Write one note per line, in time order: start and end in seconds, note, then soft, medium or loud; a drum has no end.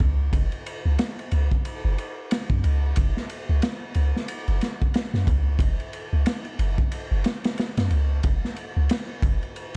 0.00 0.30 C#2 medium
0.00 kick medium
0.33 0.50 F#1 loud
0.33 kick loud
0.33 ride medium
0.52 ride soft
0.66 ride medium
0.85 0.97 C#2 medium
0.99 snare loud
0.99 ride medium
1.19 ride soft
1.31 1.49 C#2 medium
1.31 ride medium
1.51 kick medium
1.65 ride medium
1.84 1.96 F#1 loud
1.98 ride medium
2.31 snare loud
2.31 ride loud
2.50 2.62 F#2 medium
2.50 kick medium
2.64 2.93 C#2 medium
2.64 ride medium
2.96 3.14 F#1 loud
2.96 kick loud
2.96 ride medium
3.17 snare soft
3.30 ride medium
3.49 3.61 C#2 loud
3.62 snare loud
3.62 ride medium
3.94 4.13 C#2 medium
3.94 ride medium
4.16 snare soft
4.28 ride medium
4.48 4.60 F#1 loud
4.48 ride soft
4.61 snare medium
4.61 ride medium
4.82 kick medium
4.94 snare loud
4.94 ride medium
5.14 5.26 F#2 medium
5.14 snare soft
5.27 5.57 C#2 medium
5.27 kick loud
5.27 ride medium
5.59 5.77 F#1 loud
5.59 kick loud
5.59 ride medium
5.80 ride soft
5.93 ride medium
6.13 6.25 C#2 medium
6.26 snare loud
6.26 ride loud
6.45 ride soft
6.59 6.76 F#1 medium
6.59 ride medium
6.78 kick medium
6.92 ride medium
7.11 7.23 F#1 loud
7.24 snare medium
7.24 ride medium
7.44 snare loud
7.44 ride medium
7.58 snare loud
7.58 ride medium
7.77 7.89 F#2 loud
7.77 snare medium
7.77 ride medium
7.90 8.21 C#2 medium
7.90 ride medium
8.23 8.41 F#1 medium
8.23 kick loud
8.23 ride medium
8.45 snare soft
8.56 ride medium
8.77 8.88 C#2 medium
8.89 snare loud
8.89 ride medium
9.22 9.40 F#1 medium
9.22 kick loud
9.22 ride medium
9.43 ride soft
9.56 ride medium